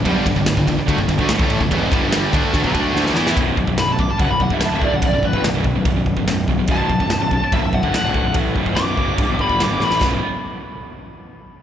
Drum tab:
CC |----------------|----------------|----------------|----------------|
RD |x-x-x-x-x-x-x-x-|x-x-x-x-x-x-----|b---b---b---b---|b---b---b---b---|
SD |----o-------o---|----o-------oooo|----o-------o---|----o-------o---|
BD |o-oo-oo-oooo-o-o|o-o---o-ooo-----|o-oo--o-o-oo--o-|o-oo--o-o-oo--o-|

CC |----------------|----------------|x---------------|
RD |b---b---b---b---|b---b---b---b---|----------------|
SD |----o-------o---|----o-------o-oo|o---------------|
BD |o-oo--o-o-oo--o-|o-oo--o-o-oo----|o---------------|